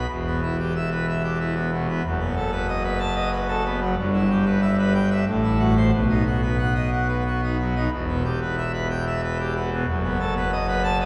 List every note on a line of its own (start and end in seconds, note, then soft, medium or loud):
0.09 2.01 E1 medium
0.09 2.01 E2 medium
0.26 0.40 B3 medium
0.42 0.57 E4 medium
0.59 0.73 G4 medium
0.75 0.89 E5 medium
0.92 1.06 B4 medium
1.08 1.22 E5 medium
1.24 1.38 G4 medium
1.40 1.54 E4 medium
1.55 1.70 B3 medium
1.72 1.87 B2 medium
1.89 2.02 B3 medium
2.05 3.94 F#1 loud
2.05 3.94 F#2 loud
2.20 2.35 B3 medium
2.36 2.51 A4 medium
2.52 2.67 B4 medium
2.68 2.83 D#5 loud
2.84 2.99 B4 medium
2.99 3.14 A5 loud
3.15 3.31 D#5 medium
3.32 3.47 B4 loud
3.48 3.63 A4 medium
3.65 3.80 B3 loud
3.81 3.95 F#3 medium
3.97 5.24 G1 loud
3.97 5.24 G2 loud
4.13 4.28 E4 medium
4.29 4.44 G4 medium
4.46 4.61 B4 medium
4.61 4.76 E5 loud
4.78 4.93 B4 medium
4.94 5.09 G5 loud
5.11 5.25 E5 medium
5.26 5.91 A1 medium
5.26 5.91 A2 medium
5.43 5.58 E4 medium
5.59 5.74 F#4 medium
5.76 5.91 C5 medium
5.93 7.87 B1 medium
5.93 7.87 B2 medium
6.09 6.24 D#4 medium
6.26 6.41 F#4 medium
6.42 6.57 B4 medium
6.58 6.74 F#5 medium
6.75 6.90 D#5 medium
6.92 7.07 F#5 medium
7.08 7.23 B4 medium
7.26 7.41 F#4 medium
7.43 7.57 D#4 medium
7.59 7.74 F#3 medium
7.76 7.90 D#4 medium
7.91 9.83 E1 medium
7.91 9.83 E2 medium
8.08 8.23 B3 medium
8.24 8.39 G4 medium
8.41 8.56 B4 medium
8.57 8.72 E5 medium
8.73 8.88 B4 medium
8.90 9.04 G5 loud
9.07 9.21 E5 medium
9.24 9.38 B4 medium
9.39 9.54 G4 medium
9.56 9.70 B3 medium
9.72 9.86 B2 medium
9.88 11.05 F#1 medium
9.88 11.05 F#2 loud
10.04 10.18 B3 medium
10.20 10.34 A4 medium
10.37 10.51 B4 medium
10.52 10.66 D#5 medium
10.68 10.82 B4 medium
10.84 10.98 A5 loud
11.00 11.05 D#5 medium